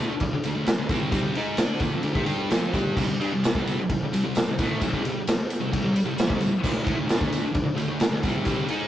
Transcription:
Already playing: A3 D4
0.10 muted distorted electric guitar stroke
0.20 muted distorted electric guitar stroke, kick, ride
0.33 muted distorted electric guitar stroke
0.44 D3 A3, ride, tambourine
0.55 D3 A3
0.66 muted distorted electric guitar stroke, snare, ride, tambourine
0.78 D3 A3
0.89 C3 G3 C4, kick, ride, tambourine
1.11 C3 G3 C4, kick, ride, tambourine
1.35 G#3 D#4 G#4, ride, tambourine
1.57 D4 A4 D5, snare, ride, tambourine
1.80 D3 A3, kick, ride, tambourine
1.94 F3 C4
2.03 D3 A3, ride
2.07 tambourine
2.14 C4 G4, kick
2.26 G3 D4 G4, ride, tambourine
2.50 F3 C4 F4, snare, ride, tambourine
2.72 G3 D4 G4, kick, ride, tambourine
2.96 C3 G3, kick, crash, tambourine
3.08 C3 G3
3.20 G3 D4, ride
3.33 C3 G3
3.44 C3 G3, snare, ride, tambourine
3.55 C3 G3 C4, kick
3.67 ride, tambourine
3.80 muted distorted electric guitar stroke
3.90 muted distorted electric guitar stroke, kick, ride
4.03 muted distorted electric guitar stroke
4.12 C3 G3, ride, tambourine
4.24 C3 G3
4.35 muted distorted electric guitar stroke, snare, ride, tambourine
4.48 C3 G3
4.58 A2 E3 A3, kick, ride, tambourine
4.81 muted distorted electric guitar stroke, kick, ride, tambourine
4.92 D3 A3, kick, snare
5.03 C3 G3, ride
5.14 muted distorted electric guitar stroke
5.27 muted distorted electric guitar stroke, snare, ride, tambourine
5.50 ride, tambourine
5.60 C3 G3
5.71 C3 G3, kick, ride
5.84 C3 G3
5.95 muted distorted electric guitar stroke, ride, tambourine
6.05 C3 G3
6.16 muted distorted electric guitar stroke, snare, ride, tambourine
6.27 A2 E3, kick
6.38 C3 G3, ride, tambourine
6.51 muted distorted electric guitar stroke
6.63 D3 A3, kick, tambourine, crash
6.73 D3 A3, snare
6.84 A3 E4, kick, ride
6.95 D3 A3
7.06 D3 A3, ride
7.10 snare, tambourine
7.17 D3 A3 D4
7.21 kick
7.33 ride, tambourine
7.41 muted distorted electric guitar stroke
7.53 muted distorted electric guitar stroke, kick, ride
7.64 muted distorted electric guitar stroke
7.75 D3 A3, ride
7.80 tambourine
7.88 D3 A3
8.00 muted distorted electric guitar stroke, snare, ride, tambourine
8.11 D3 A3
8.23 C3 G3 C4, kick, ride, tambourine
8.45 C3 G3 C4, kick, ride, tambourine
8.68 G#3 D#4 G#4, ride, tambourine

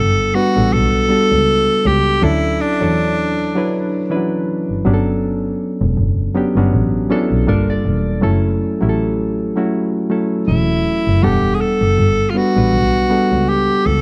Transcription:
Already playing: G1 G3 B3 D4 A4 F#5
0.34 G3 B3 D4 F#4 B4
0.55 A1 G3 B3 D4 F#4 A4
0.73 B1 A4
1.09 G3 B3 D4 F#4 A4
1.32 C#2
1.86 C#2 G4
2.21 D2 F#3 C#4 D4 E4 A4
2.61 D4
2.81 E2 F#3 D4 E4 A4 C#5
3.55 F#3 D4 E4 B4 C#5
4.10 E3 C#4 D4 E4 B4
4.16 F#3
4.69 G1
4.85 G1 F#3 B3 C#4 D4 G4
4.94 A4
5.81 E1
5.98 F#1
6.35 F#3 B3 C#4 D4 G4
6.56 G1 F#3 B3 C#4 D4 F#4
6.73 A1
7.10 F#3 B3 C#4 D4 E4 A4
7.31 B1
7.47 G1 G3 A#3 D4 F4 A4 A#4
7.70 D5
7.85 E1
8.21 F#1 F#3 A3 C#4 E4 A4
8.81 A1 F#3 A3 C#4 E4 G4
8.89 A4
9.56 F#3 A3 C#4 E4 F#4
10.10 F#3 A3 C#4 E4 A4
10.47 E1 E4
11.07 F#1
11.22 E1 G3 B3 D4 G4 A4 F#5
11.54 G#4
11.61 A4
11.81 F#1
11.98 G1
12.30 F4
12.34 G3 B3 D4 F#4 B4
12.56 A1 G3 B3 D4 F#4 B4
12.73 B1
13.10 G3 B3 D4 A4 F#5
13.31 C#2
13.49 G4
13.86 C#2 A4

